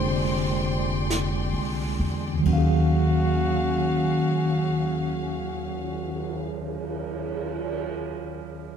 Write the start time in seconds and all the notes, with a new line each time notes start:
Already playing: F1 D3 G#3 A#3 C4 D4 F4 G4 G#4 A#4 C5 D5 G5 C6
1.10 brush sweep, snare, hi-hat pedal
1.53 C2
1.99 E2
2.34 D#2
2.38 D#3
2.43 D#2 F#3 C#4 F#4 G#4, kick, ride
2.47 C#4 F5
2.53 F5
2.58 G#4
3.42 cymbal swell